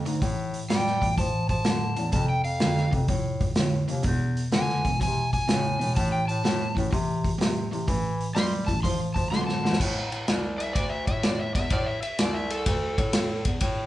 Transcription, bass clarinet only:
0.06 G#2
0.22 A2
0.70 G3
1.18 F3
1.49 F3
1.65 D3
1.97 E2
2.13 F2
2.44 F2
2.61 F2
2.93 F2
3.09 A2
3.57 A2
3.89 D#2
4.04 E2
4.53 D3
5.01 C3
5.49 A2
5.80 A2
5.96 A2
6.28 A2
6.44 A2
6.77 A2
6.93 C3
7.40 C3
7.72 C3
7.88 E3
8.35 G3
8.84 F3
9.16 F3
9.31 D3
9.62 D3
9.80 A2
10.11 A2
10.27 C2
10.75 D2
11.07 A2
11.55 E2
11.71 A2
12.18 C2
12.66 D2
12.98 A2
13.45 E2
13.61 A2

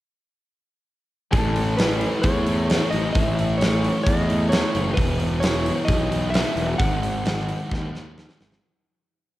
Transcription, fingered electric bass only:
1.33 A1
2.24 E2
2.93 A1
3.16 A1
4.07 E2
4.75 F#1
4.98 E1
5.89 B1
6.55 E1
6.80 G#1
7.72 D#2
8.40 G#1

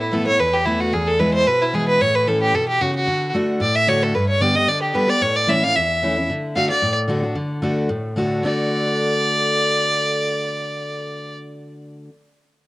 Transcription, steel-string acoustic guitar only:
Already playing: A2
0.11 E3 A3 B3 E4
0.27 B3 E4
0.39 E2
0.66 E3 A3 B3 E4
0.93 E2
1.19 E3 G#3 B3 E4
1.47 B2
1.73 E3 G#3 B3 E4
2.01 A2
2.27 E3 A3 C#4 E4
2.54 B2
2.81 C#3
3.07 D3
3.33 D3 A3 D4 F#4
3.60 A2
3.87 D3 A3 D4 F#4
4.15 G2
4.40 D3 G3 B3 G4
4.55 G4
4.68 D3
4.94 D3 G3 B3 G4
5.07 B3 G4
5.21 A2
5.47 E3 A3 C#4 E4
5.62 C#4 E4
5.76 E2
6.02 E3 A3 C#4 E4
6.16 C#4 E4
6.29 D3
6.55 D3 A3 D4 F#4
6.69 D4 F#4
6.82 A2
7.08 D3 A3 D4 F#4
7.22 D4 F#4
7.35 D3
7.62 D3 A3 D4 F#4
7.89 A2
8.16 D3 A3 D4 F#4
8.43 D3 A3 D4 F#4

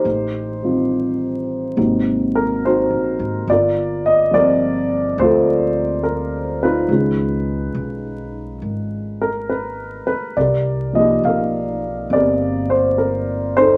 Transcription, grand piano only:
Already playing: D#4 G4 C5
0.63 D#3 G3 C4 F4
1.76 C3 F#3 A#3 D#4
2.35 A#4
2.65 D#4 F#4 C5
3.50 F4 A#4 D5
4.06 D#5
4.31 F3 G3 C4 D5
4.35 F4 A#4
5.19 F4 A4 C5
6.04 A#4
6.63 D#4 F4 B4
6.88 D#3 G#3 C#4
6.93 F4
9.21 A#4
9.49 B4
10.07 B4
10.37 G4 A#4 D5
10.93 F3 A#3 D#5
10.97 D#4 G4
11.25 A#4 F5
12.10 C4 G4 D5
12.14 A#4
12.70 C5
12.98 A#4
13.57 D#4 A4 C5

